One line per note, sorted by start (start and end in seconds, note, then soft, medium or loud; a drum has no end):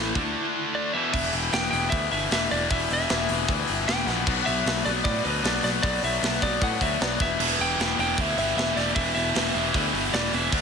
0.00 0.11 A1 medium
0.00 0.14 A2 loud
0.00 0.15 A2 medium
0.00 0.15 E3 loud
0.00 0.15 E3 medium
0.00 0.14 A3 loud
0.00 0.15 A3 loud
0.00 0.71 E4 medium
0.14 0.34 D2 loud
0.14 0.93 D3 medium
0.14 0.93 A3 medium
0.14 0.94 A3 medium
0.14 0.93 D4 loud
0.14 0.94 D4 medium
0.14 kick loud
0.14 open hi-hat medium
0.75 0.93 D5 medium
0.93 1.12 E2 medium
0.93 1.13 E2 medium
0.93 1.12 B2 medium
0.93 1.13 B2 medium
0.93 1.12 E3 loud
0.93 1.13 E3 loud
0.93 1.12 E5 medium
1.13 1.29 E1 medium
1.13 1.52 E2 loud
1.13 1.52 B2 loud
1.13 2.10 E3 medium
1.13 1.53 E3 loud
1.13 2.13 B3 loud
1.13 2.11 E4 loud
1.13 2.11 G4 loud
1.13 2.11 B4 loud
1.13 1.34 E5 loud
1.13 kick loud
1.13 crash loud
1.33 1.48 E1 loud
1.33 1.52 G5 loud
1.33 open hi-hat medium
1.52 1.68 E1 medium
1.52 1.71 E2 medium
1.52 1.71 B2 medium
1.52 1.72 E3 medium
1.52 1.69 G5 loud
1.52 snare loud
1.52 open hi-hat medium
1.71 1.88 E1 loud
1.71 1.91 E2 medium
1.71 1.92 B2 medium
1.71 1.92 E3 loud
1.71 1.90 G5 loud
1.71 open hi-hat medium
1.90 2.07 D2 loud
1.90 2.28 E2 medium
1.90 2.30 B2 loud
1.90 2.30 E3 loud
1.90 2.10 E5 loud
1.90 kick loud
1.90 open hi-hat medium
2.11 2.27 G1 medium
2.11 2.30 E3 medium
2.11 2.31 B3 medium
2.11 2.30 E4 medium
2.11 2.30 G4 medium
2.11 2.33 B4 medium
2.11 2.30 E5 medium
2.11 open hi-hat medium
2.30 2.46 E1 medium
2.30 2.49 E2 medium
2.30 2.50 B2 medium
2.30 2.69 E3 medium
2.30 2.50 E3 loud
2.30 2.71 B3 medium
2.30 2.70 E4 medium
2.30 2.70 G4 medium
2.30 2.72 B4 loud
2.30 2.51 E5 medium
2.30 snare loud
2.30 open hi-hat medium
2.50 2.67 E1 medium
2.50 2.69 E2 medium
2.50 2.69 B2 loud
2.50 2.70 E3 loud
2.50 2.70 D5 loud
2.50 open hi-hat medium
2.70 2.86 E1 medium
2.70 3.09 E2 loud
2.70 3.10 B2 loud
2.70 3.67 E3 loud
2.70 3.10 E3 loud
2.70 3.69 B3 loud
2.70 3.68 E4 loud
2.70 3.67 G4 loud
2.70 3.67 B4 loud
2.70 2.91 E5 loud
2.70 kick loud
2.70 open hi-hat loud
2.90 3.05 E1 loud
2.90 3.92 E5 loud
2.90 open hi-hat medium
3.09 3.25 E1 medium
3.09 3.27 E2 medium
3.09 3.28 B2 medium
3.09 3.29 E3 loud
3.09 snare loud
3.09 open hi-hat medium
3.28 3.45 E1 loud
3.28 3.47 E2 medium
3.28 3.48 B2 medium
3.28 3.48 E3 loud
3.28 open hi-hat medium
3.48 3.64 D2 loud
3.48 3.86 E2 medium
3.48 3.87 B2 medium
3.48 3.87 E3 loud
3.48 kick loud
3.48 open hi-hat medium
3.68 3.84 G1 medium
3.68 3.86 E3 medium
3.68 3.88 B3 medium
3.68 3.87 E4 medium
3.68 3.86 G4 medium
3.68 3.89 B4 loud
3.68 open hi-hat medium
3.87 4.03 E1 medium
3.87 4.06 E2 medium
3.87 4.07 B2 medium
3.87 4.26 E3 medium
3.87 4.07 E3 medium
3.87 4.27 B3 medium
3.87 4.26 E4 medium
3.87 4.26 G4 loud
3.87 7.40 B4 medium
3.87 4.07 G5 loud
3.87 snare loud
3.87 open hi-hat medium
4.07 4.22 A#1 loud
4.07 4.26 E2 medium
4.07 4.25 B2 medium
4.07 4.26 E3 loud
4.07 4.47 F#5 loud
4.07 snare soft
4.07 open hi-hat medium
4.26 4.42 B1 loud
4.26 5.23 B2 loud
4.26 4.65 B2 loud
4.26 5.24 F#3 loud
4.26 4.66 F#3 loud
4.26 5.26 B3 loud
4.26 4.66 B3 loud
4.26 5.24 D4 loud
4.26 5.23 F#4 loud
4.26 kick loud
4.26 crash loud
4.46 4.62 B1 loud
4.46 4.85 E5 loud
4.46 open hi-hat medium
4.65 4.81 B1 medium
4.65 4.84 B2 medium
4.65 4.84 F#3 medium
4.65 4.86 B3 loud
4.65 snare loud
4.65 open hi-hat medium
4.85 5.01 B1 loud
4.85 5.03 B2 medium
4.85 5.03 F#3 medium
4.85 5.05 B3 medium
4.85 4.91 D5 medium
4.85 open hi-hat medium
5.04 5.20 A2 loud
5.04 5.42 B2 loud
5.04 5.43 F#3 loud
5.04 5.44 B3 loud
5.04 5.23 D5 loud
5.04 kick loud
5.04 open hi-hat medium
5.24 5.40 D2 medium
5.24 5.42 B2 medium
5.24 5.43 F#3 medium
5.24 5.44 B3 medium
5.24 5.43 D4 medium
5.24 5.43 F#4 loud
5.24 5.44 B4 medium
5.24 open hi-hat medium
5.43 5.59 B1 medium
5.43 5.62 B2 medium
5.43 5.82 B2 medium
5.43 5.62 F#3 medium
5.43 5.82 F#3 medium
5.43 5.64 B3 medium
5.43 5.84 B3 loud
5.43 5.83 D4 loud
5.43 5.83 F#4 loud
5.43 5.63 D5 medium
5.43 snare loud
5.43 open hi-hat medium
5.63 5.79 B1 loud
5.63 5.81 B2 loud
5.63 5.82 F#3 loud
5.63 5.83 B3 loud
5.63 5.69 D5 medium
5.63 snare soft
5.63 open hi-hat medium
5.82 5.99 B1 medium
5.82 6.20 B2 loud
5.82 6.80 B2 loud
5.82 6.21 F#3 loud
5.82 6.80 F#3 loud
5.82 6.23 B3 loud
5.82 6.82 B3 loud
5.82 6.81 D4 loud
5.82 6.80 F#4 loud
5.82 6.03 D5 loud
5.82 kick loud
5.82 open hi-hat loud
6.03 6.18 B1 medium
6.03 6.40 E5 loud
6.03 open hi-hat medium
6.21 6.38 B1 medium
6.21 6.40 B2 medium
6.21 6.40 F#3 medium
6.21 6.42 B3 medium
6.21 snare loud
6.21 open hi-hat medium
6.41 6.57 B1 loud
6.41 6.59 B2 medium
6.41 6.60 F#3 medium
6.41 6.61 B3 medium
6.41 6.63 D5 medium
6.41 kick medium
6.41 open hi-hat medium
6.60 6.77 A2 loud
6.60 6.98 B2 medium
6.60 6.99 F#3 loud
6.60 7.01 B3 loud
6.60 6.81 F#5 loud
6.60 kick loud
6.60 open hi-hat medium
6.81 6.96 D2 medium
6.81 7.00 B2 medium
6.81 7.00 F#3 medium
6.81 7.01 B3 medium
6.81 7.00 D4 medium
6.81 6.99 F#4 medium
6.81 7.01 E5 medium
6.81 kick medium
6.81 open hi-hat medium
7.00 7.16 B1 medium
7.00 7.19 B2 medium
7.00 7.19 F#3 medium
7.00 10.51 B3 medium
7.00 7.20 B3 loud
7.00 7.20 D4 medium
7.00 7.20 F#4 medium
7.00 7.21 D5 medium
7.00 snare loud
7.00 open hi-hat medium
7.20 7.35 E1 medium
7.20 7.38 E2 medium
7.20 7.38 B2 loud
7.20 8.17 E3 medium
7.20 7.40 E3 loud
7.20 8.18 B3 loud
7.20 8.19 E4 medium
7.20 8.19 G4 loud
7.20 7.57 E5 medium
7.20 kick loud
7.20 snare soft
7.20 open hi-hat medium
7.39 7.55 E1 medium
7.39 7.79 E2 medium
7.39 7.79 B2 loud
7.39 7.80 E3 loud
7.39 crash loud
7.59 7.74 E1 loud
7.59 7.99 G5 loud
7.59 open hi-hat medium
7.78 7.94 E1 medium
7.78 7.97 E2 medium
7.78 7.97 B2 medium
7.78 7.99 E3 medium
7.78 snare loud
7.78 open hi-hat medium
7.98 8.14 E1 medium
7.98 8.17 E2 medium
7.98 8.18 B2 medium
7.98 8.18 E3 medium
7.98 8.21 G5 loud
7.98 open hi-hat medium
8.17 8.33 D2 loud
8.17 8.56 E2 loud
8.17 8.57 B2 loud
8.17 8.36 E3 medium
8.17 8.57 E3 loud
8.17 8.37 B3 medium
8.17 8.37 E4 medium
8.17 8.35 G4 medium
8.17 8.37 E5 loud
8.17 kick loud
8.17 open hi-hat medium
8.36 8.53 G1 medium
8.36 8.75 E3 medium
8.36 8.76 B3 medium
8.36 8.76 E4 medium
8.36 8.75 G4 medium
8.36 8.56 E5 medium
8.36 open hi-hat medium
8.57 8.72 E1 medium
8.57 8.75 E2 medium
8.57 8.76 B2 medium
8.57 8.76 E3 loud
8.57 8.77 E5 medium
8.57 snare loud
8.57 open hi-hat medium
8.76 8.92 E1 medium
8.76 8.94 E2 medium
8.76 8.96 B2 loud
8.76 9.72 E3 loud
8.76 8.96 E3 medium
8.76 9.73 B3 loud
8.76 9.74 E4 loud
8.76 9.74 G4 loud
8.76 8.95 D5 medium
8.76 snare soft
8.76 open hi-hat medium
8.95 9.11 E1 loud
8.95 9.33 E2 loud
8.95 9.34 B2 loud
8.95 9.34 E3 loud
8.95 9.13 E5 loud
8.95 kick loud
8.95 open hi-hat medium
9.15 9.31 E1 loud
9.15 10.13 E5 loud
9.15 open hi-hat medium
9.34 9.50 E1 medium
9.34 9.53 E2 medium
9.34 9.53 B2 medium
9.34 9.54 E3 loud
9.34 snare loud
9.34 open hi-hat loud
9.54 9.70 E1 loud
9.54 9.73 E2 medium
9.54 9.73 B2 medium
9.54 9.74 E3 loud
9.54 open hi-hat medium
9.73 9.90 D2 loud
9.73 10.12 E2 medium
9.73 10.13 B2 loud
9.73 9.92 E3 medium
9.73 10.14 E3 loud
9.73 9.93 B3 medium
9.73 9.93 E4 medium
9.73 9.92 G4 medium
9.73 kick loud
9.73 open hi-hat medium
9.93 10.09 G1 medium
9.93 10.32 E3 medium
9.93 10.32 B3 medium
9.93 10.32 E4 medium
9.93 10.31 G4 loud
9.93 open hi-hat medium
10.13 10.28 E1 medium
10.13 10.32 E2 medium
10.13 10.32 B2 medium
10.13 10.33 E3 loud
10.13 10.34 D5 medium
10.13 snare loud
10.13 open hi-hat medium
10.32 10.48 E1 medium
10.32 10.51 E2 medium
10.32 10.52 B2 loud
10.32 10.52 E3 loud
10.32 10.61 E5 loud
10.32 open hi-hat medium
10.52 10.61 D2 medium
10.52 10.61 D3 loud
10.52 10.61 D3 medium
10.52 10.61 F#3 loud
10.52 10.61 A3 loud
10.52 10.61 D4 loud
10.52 10.61 F#4 loud
10.52 kick loud
10.52 crash loud